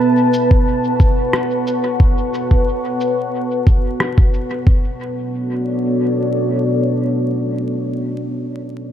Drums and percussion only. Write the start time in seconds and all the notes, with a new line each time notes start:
0.33 shaker
0.51 kick
1.00 kick, shaker
1.33 cross-stick
1.67 shaker
2.00 kick
2.34 shaker
2.51 kick
3.00 shaker
3.67 kick, shaker
4.00 cross-stick
4.18 kick
4.33 shaker
4.67 kick